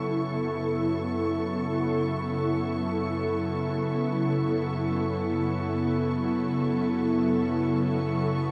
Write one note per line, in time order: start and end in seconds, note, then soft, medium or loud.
0.00 7.87 F#2 medium
0.00 8.51 C#3 medium
0.00 8.51 F#3 medium
0.00 8.51 B3 medium
0.00 8.51 E4 medium
0.00 8.51 A4 medium
0.00 7.86 C#6 medium
7.87 8.51 C#6 medium